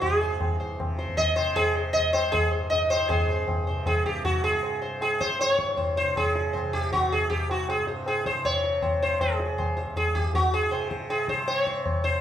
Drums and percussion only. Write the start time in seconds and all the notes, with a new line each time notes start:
0.02 tabla na, tabla ge
0.22 tabla te
0.41 tabla na, tabla ge
0.60 tabla ge
0.80 tabla na, tabla ge
0.98 tabla te
1.08 tabla ge
1.18 tabla tin, tabla ge
1.37 tabla na
1.56 tabla na, tabla ge
1.95 tabla tin, tabla ge
2.14 tabla na
2.33 tabla na, tabla ge
2.72 tabla tin, tabla ge
2.91 tabla na
3.10 tabla na, tabla ge
3.29 tabla te
3.48 tabla na, tabla ge
3.67 tabla ge
3.86 tabla na, tabla ge
4.06 tabla ge
4.25 tabla tin, tabla ge
4.44 tabla na
4.54 tabla ke
4.63 tabla na
4.82 tabla te
5.01 tabla na
5.21 tabla ke
5.39 tabla na
5.59 tabla ke
5.77 tabla na, tabla ge
5.97 tabla te
6.16 tabla na, tabla ge
6.36 tabla te
6.55 tabla na, tabla ge
6.74 tabla ge
6.93 tabla na, tabla ge
7.12 tabla ge
7.31 tabla tin, tabla ge
7.50 tabla na
7.69 tabla na
7.87 tabla te
8.06 tabla na
8.26 tabla ke
8.45 tabla na, tabla ge
8.64 tabla te
8.82 tabla na, tabla ge
9.02 tabla ge
9.21 tabla na, tabla ge
9.40 tabla te
9.59 tabla na, tabla ge
9.77 tabla te
9.87 tabla ge
9.96 tabla na, tabla ge
10.15 tabla ge
10.35 tabla tin, tabla ge
10.54 tabla na
10.72 tabla na
10.91 tabla ke
11.00 tabla te
11.10 tabla na
11.28 tabla ke
11.48 tabla na
11.67 tabla ke
11.86 tabla na, tabla ge
12.05 tabla ge